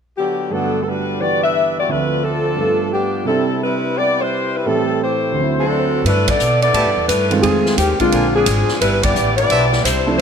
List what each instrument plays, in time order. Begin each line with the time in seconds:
0.18 saxophone section D3 F#3 B3 G4
0.50 grand piano G2 D3 A3 B3, saxophone section F#3 B3 D4 A4
0.55 grand piano F#5
0.82 saxophone section A4
0.88 saxophone section G3 D4 F#4 B4
1.19 grand piano E3 B3 D4 G4, saxophone section B3 F#4 G4 D5
1.44 saxophone section D4 G4 B4 E5
1.78 saxophone section B3 F#4 G4 D5
1.89 grand piano D2 D3 F3 C4 E5, saxophone section A3 D4 F4 B4
2.24 saxophone section F3 C4 D4 A4
2.56 grand piano G2 G3 A3 B3
2.61 grand piano F4
2.93 saxophone section F3 B3 D4 G4
3.25 grand piano C3 G3 C4 D4, saxophone section G3 C4 E4 A4
3.30 grand piano E4
3.63 saxophone section G3 C4 E4 B4
3.97 saxophone section B3 E4 G4 D5
4.21 saxophone section G3 E4 B4 C5, grand piano E4
4.56 saxophone section G3 C4 E4 B4
4.66 grand piano A2 E3 A3 C4 G4, saxophone section G3 C4 E4 A4
5.03 saxophone section A3 E4 G4 C5
5.32 grand piano D2 D3
5.38 grand piano F#3 C4
5.43 grand piano E4
5.59 saxophone section F#3 C4 D4 A4
5.71 grand piano D5
5.79 grand piano C5
5.88 grand piano A4
5.96 grand piano F#4
6.05 upright bass G2, saxophone section A3 D4 E4 B4, ride
6.28 saxophone section B3 E4 A4 D5, kick, ride
6.39 upright bass B2, hi-hat pedal
6.62 saxophone section B3 E4 A4 D5, ride
6.73 upright bass A2, trumpet section G4 B4 E5 A5, ride
6.86 upright bass G2
6.97 upright bass E2
7.08 upright bass G2, saxophone section A3 D4 E4 B4, hi-hat pedal, ride
7.31 grand piano D#3 G#3 A3 C4 F4, ride
7.40 upright bass F2, saxophone section F3 C4 D#4 G4 G#4, ride
7.66 snare
7.77 upright bass D#2, saxophone section D#3 G#3 C4 G4, hi-hat pedal, ride
8.00 grand piano D3 G#3 A#3 C4 F4, saxophone section G#3 C4 D4 F4, muted upright bass stroke, kick, ride
8.11 upright bass A#1, trumpet section D4 A#4 C5 G#5, ride
8.35 saxophone section F3 C4 D4 G#4
8.46 upright bass G#1, hi-hat pedal, ride
8.69 snare
8.81 upright bass G1, saxophone section G3 D4 E4 B4, ride
9.03 saxophone section B3 E4 G4 D5, kick, ride
9.15 upright bass A1, hi-hat pedal
9.37 saxophone section B3 E4 G4 D5, ride
9.49 upright bass B1, trumpet section D4 B4 C5 E5, ride
9.73 snare
9.84 upright bass C2, saxophone section G3 D4 E4 C5, hi-hat pedal, ride
10.06 grand piano F3 A3 C4 D4 E4
10.18 saxophone section A3 F4 C5